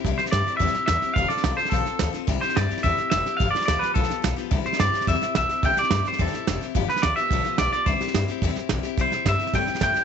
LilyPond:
<<
  \new Staff \with { instrumentName = "Clean electric guitar" } { \time 4/4 \key c \major \tempo 4 = 215 r8 c''8 d''4 e''4 e''4 | f''8 d''4 c''8 a'4. r8 | r8 c''8 d''4 e''4 e''4 | f''8 d''8 d''8 b'8 a'4. r8 |
r8 c''8 d''4 e''4 e''4 | g''8 d''4 c''8 a'4. r8 | r8 b'8 d''8 e''4. d''8 d''8 | c''2. r4 |
c''4 e''4 g''4 g''4 | }
  \new Staff \with { instrumentName = "Steel-string acoustic guitar" } { \time 4/4 \key c \major <c g c' e' g'>8 <c' e' g'>8 <g c' e' g'>8 <c' e' g'>8 <c g c' e' g'>8 <c' e' g'>8 <g c' e' g'>8 <c' e' g'>8 | <f c' f' a'>8 <c' f' a'>8 <f c' f' a'>8 <c' f' a'>8 <f c' f' a'>8 <c' f' a'>8 <f c' f' a'>8 <c' f' a'>8 | <c g c' e' g'>8 <c' e' g'>8 <g c' e' g'>8 <c' e' g'>8 <c g c' e' g'>8 <c' e' g'>8 <g c' e' g'>8 <c' e' g'>8 | <g, d f b f' g'>8 <f b f' g'>8 <f b f' g'>8 <f b f' g'>8 <g, d f b f' g'>8 <f b f' g'>8 <f b f' g'>8 <f b f' g'>8 |
<c g c' e' g'>8 <c' e' g'>8 <g c' e' g'>8 <c' e' g'>8 <c g c' e' g'>8 <c' e' g'>8 <g c' e' g'>8 <c' e' g'>8 | <c g c' e' g'>8 <c' e' g'>8 <g c' e' g'>8 <c' e' g'>8 <c g c' e' g'>8 <c' e' g'>8 <g c' e' g'>8 <c' e' g'>8 | <g, d f b f' g'>8 <f f' g'>8 <f b f' g'>8 <f b f' g'>8 <g, d f b f' g'>8 <f b f' g'>8 <f b f' g'>8 <f b f' g'>8 | <c g c' e' g'>8 <c' e' g'>8 <g c' e' g'>8 <c' e' g'>8 <c g c' e' g'>8 <c' e' g'>8 <g c' e' g'>8 <c' e' g'>8 |
<c g c' e' g'>8 <c' e' g'>8 <g c' e' g'>8 <c' e' g'>8 <c g c' e' g'>8 <c' e' g'>8 <g c' e' g'>8 <c' e' g'>8 | }
  \new Staff \with { instrumentName = "Upright bass" } { \clef bass \time 4/4 \key c \major c,8 r8 g,8 r8 e,8 r8 e,8 r8 | f,,8 r8 c,8 r8 a,,8 r8 d,8 r8 | c,8 r8 g,8 r8 e,8 r8 f,,8 r8 | g,,8 r8 d,8 r8 b,,8 r8 b,,8 r8 |
c,8 r8 g,8 r8 e,8 r8 a,,8 r8 | c,8 r8 g,8 r8 e,8 r8 f,,8 r8 | g,,8 r8 d,8 r8 b,,8 r8 b,,8 r8 | c,8 r8 g,8 r8 e,8 r8 a,,8 r8 |
c,8 e,8 g,8 r8 a,8 r8 a,8 r8 | }
  \new DrumStaff \with { instrumentName = "Drums" } \drummode { \time 4/4 <bd sn>8 sn16 sn16 <hhp sn>8 sn8 <bd sn>16 sn16 sn8 <hhp sn>8 sn8 | <bd sn>8 sn16 sn16 <hhp sn>8 sn16 sn16 <bd sn>8 sn8 <hhp sn>8 sn8 | <bd sn>8 sn16 sn16 <hhp sn>8 sn16 sn16 <bd sn>8 sn8 <hhp sn>8 sn8 | <bd sn>8 sn16 sn16 <hhp sn>8 sn8 <bd sn>16 sn16 sn8 <hhp sn>8 sn8 |
<bd sn>8 sn16 sn16 <hhp sn>8 sn16 sn16 <bd sn>16 sn16 sn8 <hhp sn>8 sn8 | <bd sn>8 sn16 sn16 <hhp sn>8 sn16 sn16 <bd sn>16 sn16 sn8 <hhp sn>8 sn8 | <bd sn>8 sn16 sn16 <hhp sn>8 sn8 <bd sn>8 sn8 <hhp sn>8 sn8 | <bd sn>8 sn16 sn16 <hhp sn>8 sn8 <bd sn>16 sn16 sn8 <hhp sn>8 sn8 |
<bd sn>8 sn8 <hhp bd sn>8 sn16 sn16 <bd sn>8 sn16 sn16 <hhp bd sn>8 sn8 | }
>>